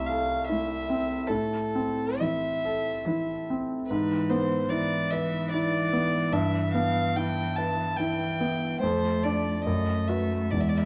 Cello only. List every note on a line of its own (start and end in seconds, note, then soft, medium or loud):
0.00 0.30 A3 soft
0.51 1.10 A3 soft
2.20 2.85 E3 soft
3.05 3.69 E3 medium
3.89 4.66 E3 medium
4.72 7.96 E3 medium
8.00 8.81 E3 soft
8.83 9.63 A3 soft
9.65 10.53 A3 soft
10.51 10.85 G#3 soft